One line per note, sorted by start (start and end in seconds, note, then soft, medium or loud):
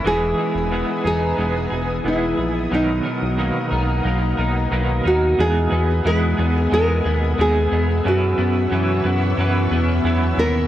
0.00 0.38 E3 medium
0.00 0.71 B3 medium
0.00 1.05 E4 medium
0.00 2.68 E6 medium
0.04 0.34 E1 loud
0.04 0.38 G#3 medium
0.04 0.39 B3 medium
0.04 0.38 D#4 medium
0.04 0.36 G#4 medium
0.04 1.06 G#4 medium
0.04 2.69 B4 medium
0.04 2.69 G#5 medium
0.04 5.34 D#6 medium
0.38 2.78 G#3 medium
0.38 0.71 B3 soft
0.38 0.72 D#4 soft
0.38 0.71 G#4 soft
0.55 0.84 E1 medium
0.71 1.05 E3 medium
0.71 1.05 G#3 medium
0.71 1.06 B3 medium
0.71 1.05 D#4 medium
0.71 1.03 G#4 medium
1.04 1.34 E1 medium
1.04 1.37 B3 soft
1.04 1.38 D#4 soft
1.04 1.38 G#4 soft
1.04 2.09 G#4 medium
1.37 1.68 E1 medium
1.37 1.71 G#3 medium
1.37 1.72 B3 medium
1.37 1.72 D#4 medium
1.37 1.69 G#4 medium
1.70 2.01 E1 medium
1.70 2.04 B3 soft
1.70 2.06 D#4 soft
1.70 2.04 G#4 soft
2.04 2.34 E1 loud
2.04 2.38 E3 medium
2.04 2.38 G#3 medium
2.04 2.39 B3 medium
2.04 2.74 E4 medium
2.04 2.36 G#4 medium
2.37 2.68 A#1 medium
2.37 2.71 B3 soft
2.37 2.71 G#4 soft
2.71 3.01 B1 loud
2.71 3.05 B2 medium
2.71 3.05 D#3 medium
2.71 3.05 F#3 medium
2.71 3.05 B3 medium
2.71 3.04 D#4 medium
2.71 4.69 D#4 medium
2.71 3.02 A#4 medium
2.71 5.36 F#5 medium
2.71 5.35 A#5 medium
3.03 3.37 F#3 soft
3.03 3.37 B3 soft
3.03 3.38 D#4 soft
3.03 3.37 A#4 soft
3.22 3.51 B1 medium
3.37 3.71 B2 medium
3.37 3.71 D#3 medium
3.37 3.72 F#3 medium
3.37 4.04 A#3 medium
3.37 3.72 B3 medium
3.37 3.71 D#4 medium
3.37 3.70 A#4 medium
3.71 4.01 B1 loud
3.71 4.03 F#3 soft
3.71 4.04 B3 soft
3.71 4.05 D#4 medium
3.71 4.05 A#4 medium
4.04 4.34 B1 loud
4.04 4.38 F#3 medium
4.04 4.71 A#3 medium
4.04 4.38 B3 medium
4.04 4.37 D#4 medium
4.04 4.36 A#4 medium
4.37 4.68 B1 medium
4.37 4.71 F#3 soft
4.37 4.71 B3 soft
4.37 4.71 D#4 soft
4.37 4.71 A#4 soft
4.71 5.01 B1 medium
4.71 5.05 B2 medium
4.71 5.05 D#3 medium
4.71 5.05 F#3 medium
4.71 5.45 A#3 medium
4.71 5.05 B3 medium
4.71 5.04 D#4 medium
4.71 5.02 A#4 medium
5.04 5.35 D#2 medium
5.04 5.38 F#3 soft
5.04 5.38 B3 soft
5.04 5.38 D#4 medium
5.04 5.41 F#4 medium
5.04 5.38 A#4 medium
5.38 5.68 E2 loud
5.38 5.72 E3 medium
5.38 5.72 G#3 medium
5.38 10.67 B3 medium
5.38 5.72 B3 medium
5.38 5.71 D#4 medium
5.38 6.06 G#4 medium
5.38 5.69 G#4 medium
5.38 8.02 G#5 medium
5.38 8.02 D#6 medium
5.38 10.67 E6 medium
5.70 6.01 E2 loud
5.70 6.04 B3 soft
5.70 6.05 D#4 soft
5.70 6.04 G#4 soft
6.05 6.34 E2 loud
6.05 6.38 E3 medium
6.05 6.38 G#3 medium
6.05 6.39 B3 medium
6.05 6.38 D#4 medium
6.05 6.36 G#4 medium
6.05 6.73 B4 loud
6.37 6.68 E2 loud
6.37 6.71 B3 soft
6.37 6.72 D#4 soft
6.37 6.71 G#4 medium
6.70 7.01 E2 loud
6.70 7.04 G#3 medium
6.70 7.05 B3 medium
6.70 7.05 D#4 medium
6.70 7.03 G#4 medium
6.70 7.40 A#4 loud
7.04 7.35 D#2 medium
7.04 7.38 B3 soft
7.04 7.38 D#4 soft
7.04 7.38 G#4 soft
7.38 7.68 D#2 loud
7.38 7.72 G#3 medium
7.38 7.72 B3 medium
7.38 7.72 D#4 medium
7.38 7.70 G#4 medium
7.38 8.08 G#4 medium
7.71 8.01 E2 medium
7.71 8.05 B3 medium
7.71 8.06 D#4 medium
7.71 8.05 G#4 soft
8.04 10.67 F#2 medium
8.04 8.35 F#2 loud
8.04 8.38 F#3 medium
8.04 8.38 C#4 medium
8.04 8.38 E4 medium
8.04 10.02 F#4 medium
8.04 8.37 B4 medium
8.04 10.67 F#5 medium
8.04 10.67 C#6 medium
8.38 8.68 F#2 medium
8.38 9.05 B3 medium
8.38 8.71 C#4 soft
8.38 8.71 E4 soft
8.38 8.71 B4 medium
8.71 9.01 F#2 loud
8.71 9.38 E3 medium
8.71 9.04 F#3 medium
8.71 9.05 C#4 medium
8.71 9.05 E4 medium
8.71 9.03 B4 medium
9.04 9.34 F#2 loud
9.04 9.71 B3 medium
9.04 9.38 C#4 soft
9.04 9.39 E4 medium
9.04 9.38 B4 medium
9.37 9.68 F#2 loud
9.37 10.67 E3 medium
9.37 9.71 F#3 medium
9.37 9.72 C#4 medium
9.37 9.72 E4 medium
9.37 9.70 B4 medium
9.71 10.01 E2 medium
9.71 10.38 B3 medium
9.71 10.04 C#4 soft
9.71 10.05 E4 soft
9.71 10.05 B4 medium
10.04 10.34 E2 loud
10.04 10.38 F#3 loud
10.04 10.39 C#4 loud
10.04 10.38 E4 medium
10.04 10.39 B4 loud
10.38 10.67 D#2 medium
10.38 10.67 B3 medium
10.38 10.67 E4 soft
10.38 10.67 A#4 loud